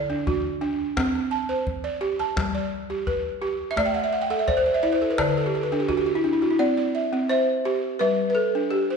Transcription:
Already playing: A4 D5
0.10 D4
0.27 F#4, calabash thump, calabash click
0.61 D4
0.97 C4, calabash thump, calabash click
1.15 calabash click
1.31 A5
1.49 C5
1.67 calabash thump
1.84 D5
2.01 G4
2.19 A5, calabash click
2.37 G3, calabash thump, calabash click
2.55 D5
2.90 G4
3.07 B4, calabash thump, calabash click
3.42 G4
3.71 E5
3.76 A3 D5, calabash thump, calabash click
3.85 G5
3.94 F#5
4.04 E5
4.13 F#5
4.22 G5
4.30 A4 F#5, calabash click
4.39 E5
4.48 C5 D5, calabash thump, calabash click
4.57 C5
4.66 D5
4.74 E5
4.83 E4 D5
4.92 C5
5.02 A4
5.10 B4
5.18 D3 C5 D5, calabash thump, calabash click
5.29 B4
5.37 A4
5.46 G4
5.54 A4, calabash click
5.63 B4
5.72 D4 A4
5.80 G4
5.89 F#4, calabash thump, calabash click
5.97 G4
6.06 F#4
6.15 E4
6.24 D4
6.33 E4
6.42 F#4, calabash click
6.50 E4
6.59 C4 D5
6.77 D5
6.95 E5
7.13 C4
7.29 C5 E5
7.65 G4
7.99 G3 B4 E5
8.30 B4
8.35 A4
8.55 D4
8.71 G4
8.90 C5

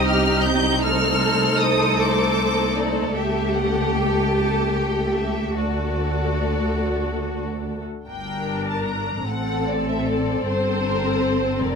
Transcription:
Already playing: C2 C4 D#4 G4 D#5
0.08 F6
0.44 G6
0.82 A3 A4 C5 F6
1.60 D#6
2.01 D6
2.77 D5
3.14 C#2 G4 A4 E5
3.54 F#5
3.93 G5
4.35 A5
4.75 G5
5.15 E5
5.56 D2 A3 F#4 A4 D5
8.07 G1 G2 D4 A#4 G5
8.68 A5
8.85 A#5
9.27 A1 A2 C4 A4 F#5
9.68 D5
9.90 E5
10.08 D5
10.46 G1 G2 C5
10.86 A#4
11.24 C5
11.61 F1 F2 A#4 D5

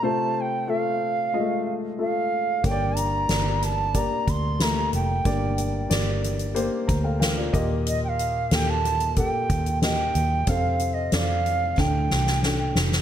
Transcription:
0.03 C3 A3 F4 C5 A5
0.36 A5
0.41 G5
0.67 A3 F4 A4 F5
1.33 G#3 F4 D#5
1.40 A3
1.98 A3 F4 A4 F5
2.64 G1 G2 D3 A#3 G4 C#5 G5, kick, closed hi-hat
2.71 D5
2.97 A#5, closed hi-hat
3.29 G1 A#3 G4 D5, snare, closed hi-hat
3.62 A5, snare, closed hi-hat
3.94 A#3 G4 D5 A#5, kick, closed hi-hat
4.28 D2 C6, kick, closed hi-hat
4.60 A3 A#3 G4 A#5, snare, closed hi-hat
4.93 F1 G5, closed hi-hat
5.25 G1 G2 D3 A#3 G4 D5, kick, closed hi-hat
5.58 closed hi-hat
5.89 G1 A#3 G4 D5, snare, closed hi-hat
6.24 closed hi-hat
6.39 closed hi-hat
6.55 A#3 G4 C5, closed hi-hat
6.88 D2 A#5, kick, closed hi-hat
7.04 A4 F5 G5
7.20 A#4 F5 G5, snare, closed hi-hat
7.37 F4 D5
7.53 D#2 A#2 A#3 G4 D#5, kick, closed hi-hat
7.87 D#5, closed hi-hat
8.04 G5
8.09 F5
8.19 closed hi-hat
8.51 D#2 A#3 G4 A4 G5, snare, closed hi-hat
8.70 A5
8.85 snare, closed hi-hat
9.00 closed hi-hat
9.16 A#3 G4 A4 G5, kick, closed hi-hat
9.50 D#2, kick, closed hi-hat
9.66 closed hi-hat
9.82 A#3 G4 D#5 G5, snare, closed hi-hat
10.15 D#2, closed hi-hat
10.47 F2 C3 C4 A4 F5, kick, closed hi-hat
10.79 closed hi-hat
10.94 D#5
11.12 F2 C4 A4 D5 F5, snare, closed hi-hat
11.46 closed hi-hat
11.77 D2 A2 D4 A4 G5, kick, snare
12.10 C2, snare
12.27 snare
12.43 D4 A4 G5, snare
12.75 F1, snare
12.92 snare

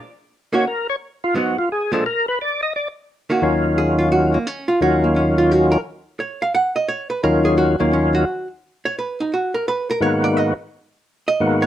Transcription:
0.53 D#3 A#3 C#4 F#4 C#5
0.67 A#4
0.90 C#5
1.24 F4
1.35 G#2 F#3 B3 D#4 F#4
1.58 F4
1.72 G#4
1.92 A#2 F3 G#3 D4 A4
2.06 A#4
2.28 B4
2.41 D5
2.63 D#5
2.76 D5
3.30 D#3 A#3 C#4 F#4
3.42 D#2 D#3 F#3 C#4 F4
3.78 G#4
3.98 F4
4.12 F#4
4.34 A#3
4.47 C#4
4.68 F4
4.81 D#2 D#3 F#3 C#4 F4 F#4
5.04 A#3
5.16 C#4
5.38 F4
5.51 F#4
5.72 A#4
6.20 C#5
6.42 F5
6.55 F#5
6.76 D#5
6.88 C#5
7.10 B4
7.23 D#2 D#3 F#3 C#4 F4 A#4
7.45 G#4
7.58 F#4
7.80 D#2 D#3 F#3 A#3 C#4 F4
7.93 C#4
8.15 F#4
8.85 C#5
8.99 B4
9.20 D#4
9.34 F#4
9.54 A#4
9.68 B4
9.91 A#4
10.00 G#2 D#3 A#3 B3 F#4 C#5
10.24 D5
10.37 D#5
11.28 D#5
11.40 G#2 D#3 A#3 B3 F#4
11.62 C#5

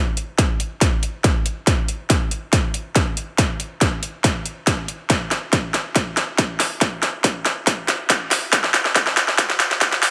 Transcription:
0.17 closed hi-hat
0.38 kick, snare, closed hi-hat
0.60 closed hi-hat
0.81 kick, snare, closed hi-hat
1.03 closed hi-hat
1.24 kick, snare, closed hi-hat
1.46 closed hi-hat
1.67 kick, snare, closed hi-hat
1.88 closed hi-hat
2.10 kick, snare, closed hi-hat
2.31 closed hi-hat
2.53 kick, snare, closed hi-hat
2.74 closed hi-hat
2.96 kick, snare, closed hi-hat
3.17 closed hi-hat
3.38 kick, snare, closed hi-hat
3.60 closed hi-hat
3.81 kick, snare, closed hi-hat
4.03 closed hi-hat
4.24 kick, snare, closed hi-hat
4.46 closed hi-hat
4.67 kick, snare, closed hi-hat
4.88 closed hi-hat
5.10 kick, snare, closed hi-hat
5.31 snare, closed hi-hat
5.53 kick, snare, closed hi-hat
5.74 snare, closed hi-hat
5.96 kick, snare, closed hi-hat
6.17 snare, closed hi-hat
6.38 kick, snare, closed hi-hat
6.60 snare, open hi-hat
6.81 kick, snare, closed hi-hat
7.03 snare, closed hi-hat
7.24 kick, snare, closed hi-hat
7.46 snare, closed hi-hat
7.67 kick, snare, closed hi-hat
7.88 snare, closed hi-hat
8.10 kick, snare, closed hi-hat
8.31 snare, open hi-hat
8.53 kick, snare, closed hi-hat
8.64 snare
8.74 snare, closed hi-hat
8.85 snare
8.96 kick, snare, closed hi-hat
9.07 snare
9.17 snare, closed hi-hat
9.28 snare
9.38 kick, snare, closed hi-hat
9.50 snare
9.60 snare, closed hi-hat
9.71 snare
9.81 kick, snare, closed hi-hat
9.92 snare
10.03 snare, open hi-hat

